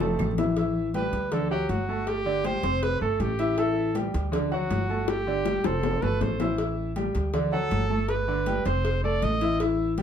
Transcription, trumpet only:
0.95 B4
1.33 A4
1.51 G4
1.69 F#4
2.08 G4
2.45 C5
2.83 B4
3.01 A4
3.21 G4
3.59 A4
4.52 F#4
5.09 G4
5.66 A4
6.03 B4
6.22 C5
7.53 A4
8.09 B4
8.66 C5
9.04 D5
9.23 D#5

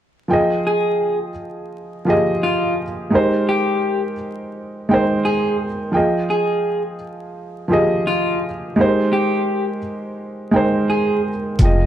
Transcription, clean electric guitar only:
0.67 G#4
2.43 F4
3.49 G4
5.25 G#4
6.30 G#4
8.07 F4
9.13 G4
10.90 G#4

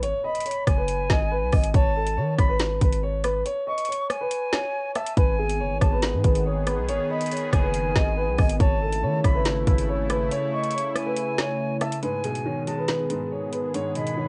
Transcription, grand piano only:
0.03 C#5
0.24 D#5
0.46 C#5
0.78 B4
1.10 D#5
1.31 B4
1.53 D#5
1.74 C#5
1.96 A4
2.17 C#5
2.49 B4
2.82 B4
3.03 C#5
3.24 B4
3.45 C#5
3.67 D#5
3.88 C#5
4.21 B4
4.53 C#5
4.96 E5
5.17 B4
5.39 G#4
5.60 C#5
5.92 B4
6.24 B4
6.46 C#5
6.67 B4
6.88 C#5
7.10 D#5
7.32 C#5
7.63 B4
7.96 D#5
8.17 B4
8.38 D#5
8.60 C#5
8.82 A4
9.03 C#5
9.35 B4
9.67 B4
9.89 C#5
10.10 B4
10.31 C#5
10.53 D#5
10.74 C#5
11.06 B4
11.39 C#5
11.81 E5
12.03 B4
12.24 G#4
12.46 C#5
12.78 B4
13.10 B4
13.32 C#5
13.53 B4
13.74 C#5
13.96 D#5
14.17 C#5

